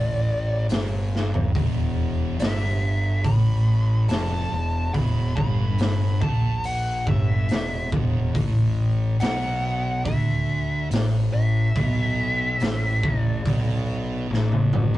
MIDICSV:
0, 0, Header, 1, 5, 480
1, 0, Start_track
1, 0, Tempo, 849858
1, 874, Time_signature, 4, 2, 24, 8
1, 8460, End_track
2, 0, Start_track
2, 0, Title_t, "Lead electric guitar"
2, 0, Program_c, 0, 29
2, 0, Note_on_c, 0, 74, 110
2, 368, Note_off_c, 0, 74, 0
2, 1358, Note_on_c, 0, 76, 88
2, 1832, Note_on_c, 0, 83, 103
2, 1850, Note_off_c, 0, 76, 0
2, 2308, Note_off_c, 0, 83, 0
2, 2310, Note_on_c, 0, 81, 100
2, 2769, Note_off_c, 0, 81, 0
2, 2794, Note_on_c, 0, 83, 109
2, 3024, Note_off_c, 0, 83, 0
2, 3031, Note_on_c, 0, 83, 99
2, 3509, Note_off_c, 0, 83, 0
2, 3511, Note_on_c, 0, 81, 90
2, 3758, Note_on_c, 0, 78, 92
2, 3761, Note_off_c, 0, 81, 0
2, 3981, Note_off_c, 0, 78, 0
2, 4003, Note_on_c, 0, 76, 80
2, 4459, Note_off_c, 0, 76, 0
2, 5199, Note_on_c, 0, 78, 109
2, 5675, Note_off_c, 0, 78, 0
2, 5677, Note_on_c, 0, 76, 92
2, 6138, Note_off_c, 0, 76, 0
2, 6402, Note_on_c, 0, 76, 113
2, 7453, Note_off_c, 0, 76, 0
2, 7453, Note_on_c, 0, 74, 113
2, 8058, Note_off_c, 0, 74, 0
2, 8460, End_track
3, 0, Start_track
3, 0, Title_t, "Distorted electric guitar"
3, 0, Program_c, 1, 30
3, 0, Note_on_c, 1, 45, 104
3, 392, Note_off_c, 1, 45, 0
3, 406, Note_on_c, 1, 43, 95
3, 872, Note_off_c, 1, 43, 0
3, 882, Note_on_c, 1, 40, 104
3, 1350, Note_off_c, 1, 40, 0
3, 1357, Note_on_c, 1, 43, 101
3, 1828, Note_off_c, 1, 43, 0
3, 1835, Note_on_c, 1, 45, 108
3, 2307, Note_off_c, 1, 45, 0
3, 2316, Note_on_c, 1, 41, 95
3, 2548, Note_off_c, 1, 41, 0
3, 2562, Note_on_c, 1, 40, 75
3, 2750, Note_off_c, 1, 40, 0
3, 2801, Note_on_c, 1, 40, 98
3, 3039, Note_off_c, 1, 40, 0
3, 3039, Note_on_c, 1, 43, 98
3, 3511, Note_off_c, 1, 43, 0
3, 3514, Note_on_c, 1, 46, 107
3, 3989, Note_off_c, 1, 46, 0
3, 3996, Note_on_c, 1, 43, 109
3, 4230, Note_off_c, 1, 43, 0
3, 4243, Note_on_c, 1, 40, 68
3, 4433, Note_off_c, 1, 40, 0
3, 4479, Note_on_c, 1, 40, 111
3, 4712, Note_off_c, 1, 40, 0
3, 4722, Note_on_c, 1, 45, 101
3, 5195, Note_off_c, 1, 45, 0
3, 5198, Note_on_c, 1, 47, 94
3, 5674, Note_off_c, 1, 47, 0
3, 5682, Note_on_c, 1, 50, 102
3, 6156, Note_off_c, 1, 50, 0
3, 6162, Note_on_c, 1, 45, 90
3, 6396, Note_off_c, 1, 45, 0
3, 6407, Note_on_c, 1, 45, 75
3, 6597, Note_off_c, 1, 45, 0
3, 6647, Note_on_c, 1, 47, 104
3, 7118, Note_off_c, 1, 47, 0
3, 7126, Note_on_c, 1, 45, 103
3, 7357, Note_off_c, 1, 45, 0
3, 7369, Note_on_c, 1, 45, 98
3, 7598, Note_off_c, 1, 45, 0
3, 7611, Note_on_c, 1, 47, 103
3, 8078, Note_off_c, 1, 47, 0
3, 8085, Note_on_c, 1, 45, 96
3, 8460, Note_off_c, 1, 45, 0
3, 8460, End_track
4, 0, Start_track
4, 0, Title_t, "Fingered electric bass"
4, 0, Program_c, 2, 33
4, 0, Note_on_c, 2, 33, 87
4, 373, Note_off_c, 2, 33, 0
4, 391, Note_on_c, 2, 31, 98
4, 850, Note_off_c, 2, 31, 0
4, 876, Note_on_c, 2, 28, 95
4, 1332, Note_off_c, 2, 28, 0
4, 1352, Note_on_c, 2, 31, 85
4, 1810, Note_off_c, 2, 31, 0
4, 1834, Note_on_c, 2, 33, 89
4, 2291, Note_off_c, 2, 33, 0
4, 2312, Note_on_c, 2, 29, 103
4, 2536, Note_off_c, 2, 29, 0
4, 2548, Note_on_c, 2, 28, 71
4, 2774, Note_off_c, 2, 28, 0
4, 2793, Note_on_c, 2, 28, 90
4, 3017, Note_off_c, 2, 28, 0
4, 3033, Note_on_c, 2, 31, 92
4, 3492, Note_off_c, 2, 31, 0
4, 3512, Note_on_c, 2, 34, 94
4, 3972, Note_off_c, 2, 34, 0
4, 3993, Note_on_c, 2, 31, 95
4, 4219, Note_off_c, 2, 31, 0
4, 4239, Note_on_c, 2, 28, 83
4, 4462, Note_off_c, 2, 28, 0
4, 4476, Note_on_c, 2, 28, 84
4, 4701, Note_off_c, 2, 28, 0
4, 4717, Note_on_c, 2, 33, 92
4, 5177, Note_off_c, 2, 33, 0
4, 5200, Note_on_c, 2, 35, 90
4, 5659, Note_off_c, 2, 35, 0
4, 5679, Note_on_c, 2, 38, 92
4, 6139, Note_off_c, 2, 38, 0
4, 6161, Note_on_c, 2, 33, 97
4, 6385, Note_off_c, 2, 33, 0
4, 6400, Note_on_c, 2, 33, 72
4, 6625, Note_off_c, 2, 33, 0
4, 6641, Note_on_c, 2, 35, 83
4, 7099, Note_off_c, 2, 35, 0
4, 7120, Note_on_c, 2, 33, 83
4, 7345, Note_off_c, 2, 33, 0
4, 7363, Note_on_c, 2, 33, 95
4, 7586, Note_off_c, 2, 33, 0
4, 7600, Note_on_c, 2, 35, 95
4, 8057, Note_off_c, 2, 35, 0
4, 8078, Note_on_c, 2, 33, 97
4, 8460, Note_off_c, 2, 33, 0
4, 8460, End_track
5, 0, Start_track
5, 0, Title_t, "Drums"
5, 391, Note_on_c, 9, 46, 61
5, 407, Note_on_c, 9, 38, 117
5, 448, Note_off_c, 9, 46, 0
5, 463, Note_off_c, 9, 38, 0
5, 652, Note_on_c, 9, 38, 63
5, 708, Note_off_c, 9, 38, 0
5, 758, Note_on_c, 9, 43, 84
5, 814, Note_off_c, 9, 43, 0
5, 876, Note_on_c, 9, 36, 100
5, 877, Note_on_c, 9, 46, 57
5, 932, Note_off_c, 9, 36, 0
5, 933, Note_off_c, 9, 46, 0
5, 1353, Note_on_c, 9, 46, 61
5, 1368, Note_on_c, 9, 38, 118
5, 1409, Note_off_c, 9, 46, 0
5, 1425, Note_off_c, 9, 38, 0
5, 1832, Note_on_c, 9, 36, 95
5, 1832, Note_on_c, 9, 46, 54
5, 1889, Note_off_c, 9, 36, 0
5, 1889, Note_off_c, 9, 46, 0
5, 2307, Note_on_c, 9, 46, 53
5, 2323, Note_on_c, 9, 38, 107
5, 2364, Note_off_c, 9, 46, 0
5, 2379, Note_off_c, 9, 38, 0
5, 2792, Note_on_c, 9, 36, 104
5, 2792, Note_on_c, 9, 46, 54
5, 2848, Note_off_c, 9, 46, 0
5, 2849, Note_off_c, 9, 36, 0
5, 3032, Note_on_c, 9, 36, 100
5, 3088, Note_off_c, 9, 36, 0
5, 3266, Note_on_c, 9, 46, 67
5, 3281, Note_on_c, 9, 38, 121
5, 3322, Note_off_c, 9, 46, 0
5, 3337, Note_off_c, 9, 38, 0
5, 3511, Note_on_c, 9, 36, 109
5, 3567, Note_off_c, 9, 36, 0
5, 3749, Note_on_c, 9, 46, 54
5, 3806, Note_off_c, 9, 46, 0
5, 3992, Note_on_c, 9, 36, 103
5, 4049, Note_off_c, 9, 36, 0
5, 4229, Note_on_c, 9, 46, 60
5, 4244, Note_on_c, 9, 38, 117
5, 4286, Note_off_c, 9, 46, 0
5, 4301, Note_off_c, 9, 38, 0
5, 4475, Note_on_c, 9, 36, 110
5, 4532, Note_off_c, 9, 36, 0
5, 4716, Note_on_c, 9, 36, 106
5, 4716, Note_on_c, 9, 46, 58
5, 4772, Note_off_c, 9, 36, 0
5, 4773, Note_off_c, 9, 46, 0
5, 5196, Note_on_c, 9, 46, 59
5, 5211, Note_on_c, 9, 38, 123
5, 5252, Note_off_c, 9, 46, 0
5, 5268, Note_off_c, 9, 38, 0
5, 5679, Note_on_c, 9, 36, 106
5, 5681, Note_on_c, 9, 46, 54
5, 5736, Note_off_c, 9, 36, 0
5, 5737, Note_off_c, 9, 46, 0
5, 6162, Note_on_c, 9, 46, 59
5, 6177, Note_on_c, 9, 38, 114
5, 6218, Note_off_c, 9, 46, 0
5, 6234, Note_off_c, 9, 38, 0
5, 6639, Note_on_c, 9, 46, 52
5, 6640, Note_on_c, 9, 36, 98
5, 6695, Note_off_c, 9, 46, 0
5, 6697, Note_off_c, 9, 36, 0
5, 7116, Note_on_c, 9, 46, 61
5, 7131, Note_on_c, 9, 38, 116
5, 7172, Note_off_c, 9, 46, 0
5, 7187, Note_off_c, 9, 38, 0
5, 7361, Note_on_c, 9, 36, 108
5, 7418, Note_off_c, 9, 36, 0
5, 7600, Note_on_c, 9, 36, 93
5, 7600, Note_on_c, 9, 46, 54
5, 7656, Note_off_c, 9, 36, 0
5, 7656, Note_off_c, 9, 46, 0
5, 8096, Note_on_c, 9, 38, 60
5, 8152, Note_off_c, 9, 38, 0
5, 8199, Note_on_c, 9, 48, 64
5, 8256, Note_off_c, 9, 48, 0
5, 8320, Note_on_c, 9, 45, 92
5, 8376, Note_off_c, 9, 45, 0
5, 8440, Note_on_c, 9, 43, 79
5, 8460, Note_off_c, 9, 43, 0
5, 8460, End_track
0, 0, End_of_file